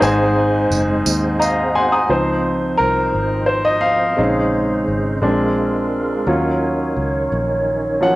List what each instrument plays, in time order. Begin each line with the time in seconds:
Already playing: grand piano D#4 A#5 D#6, tonewheel organ D#5
0.00 fingered electric bass G#1, grand piano G#2 G#4 C5 G#5, tonewheel organ G#3 C4 D#4 B4, tambourine
0.08 tonewheel organ C5
0.70 fingered electric bass F#1, tambourine
1.06 fingered electric bass D#2, tambourine
1.39 grand piano D#5 F5 A#5, tambourine
1.75 grand piano F#5 G#5 C6
1.92 grand piano A#5 D#6
2.09 fingered electric bass C#2, grand piano F3 C4 D#4 C5, tonewheel organ F3 C4 D#4 C5, french horn section G#3 D#4 F4 C5
2.77 fingered electric bass C2, grand piano A#4
3.14 fingered electric bass G#1
3.46 grand piano C5
3.65 grand piano D#5
3.81 grand piano F5
4.17 fingered electric bass A#1, tonewheel organ C#3 G#3 D#4 C5, grand piano G#3 C4 C#4 D#4, french horn section G#4
4.88 fingered electric bass G#1
5.22 fingered electric bass A#1, grand piano G#3 C4 D4, tonewheel organ G#3 D4 F4 A#4, french horn section D4 A#4
6.27 fingered electric bass D#2, tonewheel organ D#3 C#4 D#4 C#5, grand piano F#3 C#4 F4, french horn section C#4 D#4 C#5
6.97 fingered electric bass C#2
7.32 fingered electric bass A#1
8.01 grand piano F3 F#3 C#4 F#5